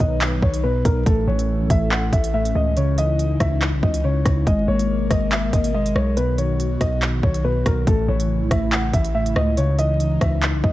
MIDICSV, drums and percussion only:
0, 0, Header, 1, 2, 480
1, 0, Start_track
1, 0, Tempo, 425532
1, 1199, Time_signature, 4, 2, 24, 8
1, 12100, End_track
2, 0, Start_track
2, 0, Title_t, "Drums"
2, 0, Note_on_c, 9, 36, 95
2, 0, Note_on_c, 9, 42, 93
2, 112, Note_off_c, 9, 36, 0
2, 113, Note_off_c, 9, 42, 0
2, 239, Note_on_c, 9, 42, 62
2, 240, Note_on_c, 9, 39, 112
2, 351, Note_off_c, 9, 42, 0
2, 353, Note_off_c, 9, 39, 0
2, 480, Note_on_c, 9, 36, 88
2, 593, Note_off_c, 9, 36, 0
2, 605, Note_on_c, 9, 42, 90
2, 718, Note_off_c, 9, 42, 0
2, 959, Note_on_c, 9, 36, 102
2, 960, Note_on_c, 9, 42, 77
2, 1072, Note_off_c, 9, 36, 0
2, 1072, Note_off_c, 9, 42, 0
2, 1198, Note_on_c, 9, 42, 70
2, 1199, Note_on_c, 9, 36, 114
2, 1311, Note_off_c, 9, 42, 0
2, 1312, Note_off_c, 9, 36, 0
2, 1568, Note_on_c, 9, 42, 78
2, 1680, Note_off_c, 9, 42, 0
2, 1919, Note_on_c, 9, 36, 101
2, 1920, Note_on_c, 9, 42, 96
2, 2032, Note_off_c, 9, 36, 0
2, 2032, Note_off_c, 9, 42, 0
2, 2160, Note_on_c, 9, 39, 110
2, 2273, Note_off_c, 9, 39, 0
2, 2399, Note_on_c, 9, 36, 86
2, 2400, Note_on_c, 9, 42, 83
2, 2512, Note_off_c, 9, 36, 0
2, 2513, Note_off_c, 9, 42, 0
2, 2525, Note_on_c, 9, 42, 94
2, 2638, Note_off_c, 9, 42, 0
2, 2767, Note_on_c, 9, 42, 73
2, 2880, Note_off_c, 9, 42, 0
2, 3120, Note_on_c, 9, 42, 72
2, 3233, Note_off_c, 9, 42, 0
2, 3359, Note_on_c, 9, 42, 76
2, 3472, Note_off_c, 9, 42, 0
2, 3601, Note_on_c, 9, 42, 69
2, 3714, Note_off_c, 9, 42, 0
2, 3839, Note_on_c, 9, 36, 98
2, 3839, Note_on_c, 9, 37, 93
2, 3839, Note_on_c, 9, 42, 95
2, 3951, Note_off_c, 9, 37, 0
2, 3952, Note_off_c, 9, 36, 0
2, 3952, Note_off_c, 9, 42, 0
2, 4079, Note_on_c, 9, 42, 64
2, 4080, Note_on_c, 9, 39, 109
2, 4192, Note_off_c, 9, 42, 0
2, 4193, Note_off_c, 9, 39, 0
2, 4320, Note_on_c, 9, 36, 88
2, 4433, Note_off_c, 9, 36, 0
2, 4444, Note_on_c, 9, 42, 91
2, 4557, Note_off_c, 9, 42, 0
2, 4800, Note_on_c, 9, 36, 101
2, 4800, Note_on_c, 9, 37, 94
2, 4800, Note_on_c, 9, 42, 79
2, 4912, Note_off_c, 9, 36, 0
2, 4913, Note_off_c, 9, 37, 0
2, 4913, Note_off_c, 9, 42, 0
2, 5040, Note_on_c, 9, 36, 112
2, 5040, Note_on_c, 9, 42, 72
2, 5152, Note_off_c, 9, 36, 0
2, 5153, Note_off_c, 9, 42, 0
2, 5407, Note_on_c, 9, 42, 76
2, 5520, Note_off_c, 9, 42, 0
2, 5759, Note_on_c, 9, 36, 101
2, 5759, Note_on_c, 9, 37, 96
2, 5760, Note_on_c, 9, 42, 96
2, 5872, Note_off_c, 9, 36, 0
2, 5872, Note_off_c, 9, 37, 0
2, 5872, Note_off_c, 9, 42, 0
2, 6000, Note_on_c, 9, 39, 108
2, 6113, Note_off_c, 9, 39, 0
2, 6240, Note_on_c, 9, 36, 92
2, 6240, Note_on_c, 9, 42, 84
2, 6352, Note_off_c, 9, 36, 0
2, 6353, Note_off_c, 9, 42, 0
2, 6365, Note_on_c, 9, 42, 92
2, 6477, Note_off_c, 9, 42, 0
2, 6608, Note_on_c, 9, 42, 72
2, 6720, Note_on_c, 9, 37, 95
2, 6721, Note_off_c, 9, 42, 0
2, 6833, Note_off_c, 9, 37, 0
2, 6959, Note_on_c, 9, 42, 73
2, 7072, Note_off_c, 9, 42, 0
2, 7199, Note_on_c, 9, 42, 78
2, 7312, Note_off_c, 9, 42, 0
2, 7442, Note_on_c, 9, 42, 73
2, 7554, Note_off_c, 9, 42, 0
2, 7679, Note_on_c, 9, 36, 101
2, 7679, Note_on_c, 9, 37, 96
2, 7680, Note_on_c, 9, 42, 94
2, 7792, Note_off_c, 9, 36, 0
2, 7792, Note_off_c, 9, 37, 0
2, 7793, Note_off_c, 9, 42, 0
2, 7918, Note_on_c, 9, 42, 64
2, 7919, Note_on_c, 9, 39, 114
2, 8031, Note_off_c, 9, 42, 0
2, 8032, Note_off_c, 9, 39, 0
2, 8159, Note_on_c, 9, 36, 89
2, 8272, Note_off_c, 9, 36, 0
2, 8284, Note_on_c, 9, 42, 91
2, 8397, Note_off_c, 9, 42, 0
2, 8639, Note_on_c, 9, 36, 105
2, 8639, Note_on_c, 9, 37, 96
2, 8640, Note_on_c, 9, 42, 77
2, 8752, Note_off_c, 9, 36, 0
2, 8752, Note_off_c, 9, 37, 0
2, 8752, Note_off_c, 9, 42, 0
2, 8879, Note_on_c, 9, 36, 115
2, 8879, Note_on_c, 9, 42, 73
2, 8992, Note_off_c, 9, 36, 0
2, 8992, Note_off_c, 9, 42, 0
2, 9246, Note_on_c, 9, 42, 78
2, 9359, Note_off_c, 9, 42, 0
2, 9599, Note_on_c, 9, 36, 100
2, 9599, Note_on_c, 9, 37, 99
2, 9599, Note_on_c, 9, 42, 98
2, 9712, Note_off_c, 9, 36, 0
2, 9712, Note_off_c, 9, 37, 0
2, 9712, Note_off_c, 9, 42, 0
2, 9839, Note_on_c, 9, 39, 110
2, 9951, Note_off_c, 9, 39, 0
2, 10079, Note_on_c, 9, 36, 87
2, 10080, Note_on_c, 9, 42, 82
2, 10192, Note_off_c, 9, 36, 0
2, 10192, Note_off_c, 9, 42, 0
2, 10204, Note_on_c, 9, 42, 94
2, 10316, Note_off_c, 9, 42, 0
2, 10447, Note_on_c, 9, 42, 76
2, 10559, Note_off_c, 9, 42, 0
2, 10559, Note_on_c, 9, 37, 100
2, 10672, Note_off_c, 9, 37, 0
2, 10798, Note_on_c, 9, 42, 74
2, 10911, Note_off_c, 9, 42, 0
2, 11038, Note_on_c, 9, 42, 83
2, 11151, Note_off_c, 9, 42, 0
2, 11280, Note_on_c, 9, 42, 73
2, 11393, Note_off_c, 9, 42, 0
2, 11519, Note_on_c, 9, 36, 99
2, 11519, Note_on_c, 9, 37, 102
2, 11519, Note_on_c, 9, 42, 97
2, 11631, Note_off_c, 9, 37, 0
2, 11632, Note_off_c, 9, 36, 0
2, 11632, Note_off_c, 9, 42, 0
2, 11758, Note_on_c, 9, 42, 63
2, 11759, Note_on_c, 9, 39, 111
2, 11871, Note_off_c, 9, 42, 0
2, 11872, Note_off_c, 9, 39, 0
2, 12000, Note_on_c, 9, 36, 92
2, 12100, Note_off_c, 9, 36, 0
2, 12100, End_track
0, 0, End_of_file